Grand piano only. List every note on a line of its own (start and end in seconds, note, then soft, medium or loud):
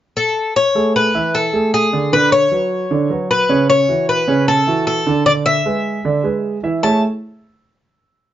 0.75 1.07 A3 medium
0.75 1.07 G#4 medium
0.75 1.07 A4 medium
1.14 1.46 E3 medium
1.14 1.47 E4 medium
1.14 1.47 E5 medium
1.53 1.85 A3 medium
1.53 1.86 G#4 medium
1.53 1.86 A4 medium
1.93 2.09 D3 medium
1.93 2.09 D4 medium
1.93 2.09 D5 medium
2.12 2.44 D3 medium
2.12 2.45 D4 medium
2.12 2.45 D5 medium
2.51 2.84 F#3 medium
2.51 2.84 F#4 medium
2.51 2.84 B4 medium
2.91 3.07 D3 medium
2.91 3.07 D4 medium
2.91 3.07 D5 medium
3.10 3.42 F#3 medium
3.10 3.43 F#4 medium
3.10 3.43 B4 medium
3.49 3.81 C#3 medium
3.49 3.82 C#4 medium
3.49 3.82 C#5 medium
3.89 4.21 E3 medium
3.89 4.21 E4 medium
3.89 4.21 F#4 medium
4.28 4.60 C#3 medium
4.28 4.60 C#4 medium
4.28 4.60 C#5 medium
4.67 4.99 E3 medium
4.67 4.99 E4 medium
4.67 5.00 F#4 medium
5.06 5.22 D3 medium
5.06 5.23 D4 medium
5.06 5.23 D5 medium
5.26 5.58 D3 medium
5.26 5.58 D4 medium
5.26 5.59 D5 medium
5.66 5.98 G#3 medium
5.66 5.98 G#4 medium
5.66 5.98 B4 medium
6.05 6.21 D3 medium
6.05 6.21 D4 medium
6.05 6.21 D5 medium
6.24 6.56 G#3 medium
6.24 6.56 G#4 medium
6.24 6.56 B4 medium
6.63 6.79 E3 medium
6.63 6.80 E4 medium
6.63 6.80 E5 medium
6.83 7.01 A3 medium
6.83 7.01 E4 medium
6.83 7.01 G#4 medium
6.83 7.01 A4 medium
6.83 7.02 C#5 medium
6.83 7.02 E5 medium